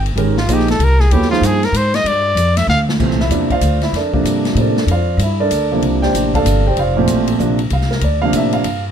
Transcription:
Already playing: G1
0.06 ride
0.16 G#1 D#3 G#3 C#4 G4 A#4, ride
0.37 F4, snare
0.47 A#1 F3 A#3 D#4 G#4 D#5, hi-hat pedal, ride
0.54 G4
0.59 snare
0.68 A4, snare, ride
0.79 C2, ride
0.84 A#4
1.00 G#4, snare
1.11 D#2 F#3 B3 E4 G4 A4 C#5, ride
1.22 snare
1.31 F3 A#3 D#4 F4 G#4 C5, snare
1.41 G2, hi-hat pedal, ride
1.46 G#4
1.63 A#4, snare, ride
1.72 G#2, hi-hat pedal, ride
1.77 C5
1.94 D#5, snare, ride
2.04 G2 D5, ride
2.35 F2, hi-hat pedal, ride
2.57 E5, snare, ride
2.67 D2 F5, snare
2.89 snare
2.99 C2 A#2 E3 A3 C4, kick, crash
3.11 snare
3.20 E4 E5, snare
3.29 E2 C3 F3 A#3 D4, hi-hat pedal, ride
3.50 F4 C5 D5 F5, kick, ride
3.61 D2, hi-hat pedal, ride
3.81 E4 E5, snare, ride
3.92 F2 D5, snare, ride
3.96 D4 A4 A#4
4.13 C3 F3 A#3 D4, kick
4.23 G2, hi-hat pedal, ride
4.45 snare, ride
4.55 A2 C3 F3 A#3 D4, ride
4.61 D4 A4 A#4 D5
4.77 snare
4.86 F2, ride
4.91 F4 C5 D5 F5
5.17 G2, hi-hat pedal, ride
5.23 E4 E5
5.40 D4 A4 A#4 D5
5.50 D2, hi-hat pedal, ride
5.72 C3 F3 A#3 D4
5.82 C2, ride
6.02 G4 C5 D5 G5, snare
6.13 A1 C3 F3 A#3 D4, hi-hat pedal, ride
6.34 A4 D5 F5 A5, kick, ride
6.44 G1, hi-hat pedal, ride
6.66 G4 C5 D5 G5
6.76 F1 F4 C5 D5 F5, ride
6.97 A#2 F3 A3 C4
7.07 A1, hi-hat pedal, ride
7.27 ride
7.39 A#1 C3 F3 A#3 D4, hi-hat pedal
7.59 ride
7.70 C2 F5, ride
7.81 snare
7.91 A#4, snare
8.01 D2 D5, ride
8.22 C3 F3 A#3 D4 F5
8.33 A2 E5, hi-hat pedal, ride
8.52 F5, ride
8.64 G2, ride

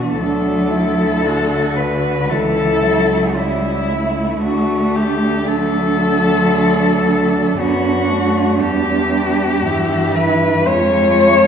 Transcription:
Already playing: B2 E3 D4 F#4
0.16 D2 F#3 D4 A4
0.71 E4
1.24 D3 F#4
1.76 F#4 B4
2.29 C#2 E3 E4 A4
2.83 F#3
3.35 G3 E4
3.89 A3
4.43 D2 D4 F#4
4.96 G4
5.47 F#3 A4
6.55 D4
7.58 F#2 B3 F#4
8.09 A3
8.60 E2 G3 G4
9.64 G2 E3 E4
10.15 B4
10.66 F2 G#3 F4 C#5

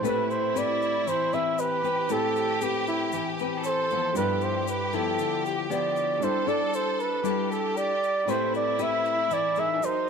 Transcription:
0.01 A2 A3 C4 E4 G4 B4
0.05 E4 G4 B4, shaker
0.30 C5, shaker
0.55 C4 G4 B4 D5, shaker
0.82 shaker
1.07 E3 C5, shaker
1.33 C4 G4 B4 E5, shaker
1.58 G4 B4, shaker
1.83 C4 G4 B4, shaker
2.08 A2 A3 C4 E4, shaker
2.12 G4 A4 B5
2.36 shaker
2.61 C4 G4 B4, shaker
2.87 E4, shaker
3.12 E3, shaker
3.39 C4 G4 B4, shaker
3.63 A4 C5, shaker
3.90 F3 B3 E4, shaker
4.14 G2 G3 D4 E4 G4 B4, shaker
4.18 A4 B4
4.41 C5, shaker
4.68 B4, shaker
4.93 F3 B3 E4 A4, shaker
5.19 D3, shaker
5.46 G4, shaker
5.70 F3 B3 E4 D5, shaker
5.96 shaker
6.20 G3 D4 E4 A4 C5, shaker
6.24 G4 A4
6.47 D4 E4 A4 D5, shaker
6.74 C5, shaker
7.00 B4, shaker
7.24 G3 D4 E4 G4 A4, shaker
7.52 A4, shaker
7.77 D5, shaker
8.03 shaker
8.25 A2 A3 C4 E4 G4 B4, shaker
8.29 G4 B4 C5
8.54 D5, shaker
8.79 C4 G4 B4 E5, shaker
9.05 shaker
9.31 E3 D5, shaker
9.56 D#4 G#4 A#4 E5, shaker
9.75 D4
9.80 F#3 D#4 A#4, shaker
9.85 C5

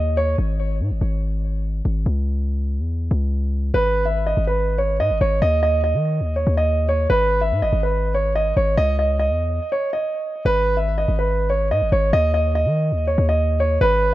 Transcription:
Already playing: D#2 D#5
0.17 C#5
0.38 G#1
0.80 G#2
0.91 G#1
1.01 G#1
1.85 G#1
2.06 C#2
2.80 E2
3.11 C#2
3.74 G#1 B4
4.05 E5
4.26 D#5
4.37 G#1
4.47 B4
4.78 C#5
5.00 G#2 D#5
5.10 G#1
5.21 G#1 C#5
5.42 D#2 D#5
5.63 D#5
5.84 D#5
5.94 D#3
6.20 D#2
6.36 C#5
6.47 D#2
6.57 D#5
6.89 C#5
7.10 G#1 B4
7.41 E5
7.52 G#2
7.62 G#1 D#5
7.73 G#1
7.83 B4
8.14 C#5
8.35 D#5
8.57 G#1 C#5
8.77 C#2 D#5
8.99 D#5
9.19 D#5
9.30 E2
9.72 C#5
9.93 D#5
10.45 G#1 B4
10.77 E5
10.98 D#5
11.08 G#1
11.19 B4
11.50 C#5
11.71 G#2 D#5
11.82 G#1
11.92 G#1 C#5
12.13 D#2 D#5
12.34 D#5
12.55 D#5
12.66 D#3
12.92 D#2
13.07 C#5
13.18 D#2
13.29 D#5
13.60 C#5
13.81 G#1 B4

